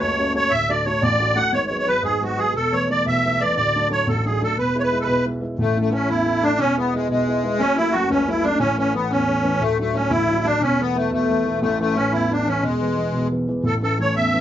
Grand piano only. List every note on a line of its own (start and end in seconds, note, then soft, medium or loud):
0.00 0.48 F#1 medium
0.00 0.35 C#2 medium
0.00 0.12 A3 medium
0.00 0.12 C#4 soft
0.00 0.12 F#4 medium
0.19 0.33 A3 soft
0.19 0.34 C#4 soft
0.19 0.33 F#4 soft
0.35 0.48 A3 medium
0.35 0.48 C#4 soft
0.35 0.48 F#4 medium
0.51 1.49 D1 medium
0.51 0.85 D2 medium
0.69 0.84 A3 soft
0.69 0.85 D4 soft
0.69 0.85 F#4 soft
0.86 1.14 A3 medium
0.86 1.14 D4 soft
0.86 1.14 F#4 soft
1.03 1.36 A1 medium
1.20 1.34 A3 soft
1.20 1.35 D4 soft
1.20 1.35 F#4 medium
1.36 1.49 A3 medium
1.36 1.50 D4 soft
1.36 1.50 F#4 medium
1.52 2.50 G#1 medium
1.52 1.86 G#2 medium
1.70 1.85 F#3 soft
1.70 1.85 G#3 soft
1.70 1.86 B3 medium
1.87 2.15 F#3 medium
1.87 2.15 G#3 soft
1.87 2.15 B3 medium
2.03 2.37 G#2 medium
2.21 2.36 F#3 soft
2.21 2.37 G#3 soft
2.21 2.37 B3 soft
2.38 2.51 F#3 medium
2.38 2.51 G#3 soft
2.38 2.51 B3 medium
2.54 3.52 E1 medium
2.54 2.88 E2 medium
2.72 2.89 E3 soft
2.72 2.89 A3 soft
2.72 2.89 B3 medium
2.90 3.18 E3 soft
2.90 3.18 A3 soft
2.90 3.18 B3 medium
3.06 3.39 B1 medium
3.25 3.40 E3 soft
3.25 3.40 A3 soft
3.25 3.40 B3 medium
3.41 3.54 E3 medium
3.41 3.54 A3 soft
3.41 3.54 B3 medium
3.57 4.54 D1 medium
3.57 3.90 D2 medium
3.76 3.89 F#3 soft
3.76 3.89 A3 soft
3.76 3.89 D4 medium
3.90 4.18 F#3 medium
3.90 4.18 A3 soft
3.90 4.18 D4 medium
4.07 4.40 A1 medium
4.24 4.39 F#3 soft
4.24 4.39 A3 soft
4.24 4.40 D4 medium
4.41 4.54 F#3 medium
4.41 4.54 A3 soft
4.41 4.54 D4 medium
4.56 5.54 E1 medium
4.56 4.90 E2 medium
4.75 4.90 G#3 medium
4.75 4.91 B3 soft
4.75 4.91 E4 soft
4.92 5.19 G#3 medium
4.92 5.20 B3 soft
4.92 5.20 E4 medium
5.07 5.41 B1 medium
5.25 5.40 G#3 soft
5.25 5.40 B3 soft
5.25 5.40 E4 soft
5.41 5.54 G#3 medium
5.41 5.54 B3 soft
5.41 5.55 E4 medium
5.58 6.55 A1 medium
5.58 5.92 A2 medium
5.77 5.90 A3 soft
5.77 5.90 C#4 soft
5.77 5.91 E4 medium
5.91 6.19 A3 medium
5.91 6.20 C#4 soft
5.91 6.20 E4 medium
6.09 6.42 E2 medium
6.26 6.41 A3 medium
6.26 6.42 C#4 soft
6.26 6.42 E4 medium
6.43 6.56 A3 medium
6.43 6.56 C#4 medium
6.43 6.56 E4 medium
6.59 7.56 E1 medium
6.59 6.93 E2 medium
6.77 6.92 G#3 soft
6.77 6.92 B3 soft
6.77 6.93 E4 medium
6.93 7.21 G#3 medium
6.93 7.21 B3 soft
6.93 7.21 E4 medium
7.09 7.43 B1 medium
7.28 7.42 G#3 medium
7.28 7.42 B3 soft
7.28 7.42 E4 medium
7.43 7.57 G#3 medium
7.43 7.57 B3 medium
7.43 7.56 E4 medium
7.59 8.56 F#1 medium
7.59 7.93 F#2 medium
7.78 7.92 F#3 soft
7.78 7.92 A3 soft
7.78 7.93 C#4 medium
7.93 8.21 F#3 medium
7.93 8.21 A3 soft
7.93 8.22 C#4 medium
8.10 8.44 C#2 medium
8.27 8.42 F#3 soft
8.27 8.42 A3 soft
8.27 8.43 C#4 medium
8.43 8.57 F#3 soft
8.43 8.57 A3 soft
8.43 8.57 C#4 medium
8.60 9.57 A1 medium
8.60 8.94 A2 medium
8.77 8.93 E3 soft
8.77 8.93 A3 soft
8.77 8.93 C#4 medium
8.94 9.22 E3 medium
8.94 9.22 A3 soft
8.94 9.22 C#4 medium
9.10 9.44 E2 medium
9.27 9.42 E3 soft
9.27 9.43 A3 soft
9.27 9.43 C#4 medium
9.43 9.57 E3 medium
9.43 9.57 A3 soft
9.43 9.58 C#4 medium
9.60 10.57 D1 medium
9.60 9.94 D2 medium
9.79 9.93 F#3 soft
9.79 9.94 A3 soft
9.79 9.94 D4 medium
9.94 10.22 F#3 soft
9.94 10.23 A3 soft
9.94 10.23 D4 medium
10.11 10.45 A1 medium
10.29 10.43 F#3 soft
10.29 10.43 A3 soft
10.29 10.44 D4 soft
10.44 10.58 F#3 soft
10.44 10.58 A3 soft
10.44 10.58 D4 medium
10.60 11.58 E1 medium
10.60 10.95 E2 medium
10.80 10.94 E3 medium
10.80 10.94 A3 soft
10.80 10.95 B3 soft
10.95 11.23 E3 soft
10.95 11.24 A3 medium
10.95 11.24 B3 soft
11.12 11.46 B1 medium
11.29 11.44 E3 soft
11.29 11.44 A3 soft
11.29 11.45 B3 medium
11.45 11.59 E3 medium
11.45 11.59 A3 soft
11.45 11.59 B3 medium
11.62 12.59 A1 medium
11.62 11.96 A2 medium
11.80 11.95 E3 medium
11.80 11.94 A3 medium
11.80 11.95 C#4 medium
11.96 12.24 E3 soft
11.96 12.24 A3 soft
11.96 12.24 C#4 medium
12.13 12.47 E2 medium
12.30 12.44 E3 soft
12.30 12.45 A3 soft
12.30 12.45 C#4 medium
12.46 12.60 E3 medium
12.46 12.60 A3 medium
12.46 12.60 C#4 medium
12.62 13.60 E1 medium
12.62 12.97 E2 medium
12.81 12.95 E3 soft
12.81 12.95 G#3 soft
12.81 12.96 B3 soft
12.97 13.25 E3 soft
12.97 13.25 G#3 soft
12.97 13.25 B3 medium
13.13 13.47 B1 medium
13.31 13.46 E3 soft
13.31 13.47 G#3 soft
13.31 13.47 B3 medium
13.48 13.61 E3 medium
13.48 13.62 G#3 soft
13.48 13.62 B3 medium
13.63 14.41 A1 soft
13.63 13.97 A2 medium
13.82 13.97 E3 medium
13.82 13.98 A3 soft
13.82 13.98 C#4 medium
13.99 14.26 E3 soft
13.99 14.27 A3 medium
13.99 14.27 C#4 medium
14.15 14.41 E2 medium
14.33 14.41 E3 medium
14.33 14.41 A3 soft
14.33 14.41 C#4 medium